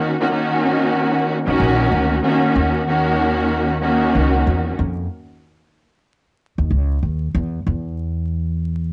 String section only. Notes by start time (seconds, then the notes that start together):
Already playing: D#3 A#3 C#4 F#4
0.20 D#3 A#3 C#4 F#4
0.30 D#3 A#3 C#4 F#4
1.46 D#3 A#3 C#4 F#4
2.23 D#3 A#3 C#4 F#4
2.88 D#3 A#3 C#4 F#4
3.82 D#3 A#3 C#4 F#4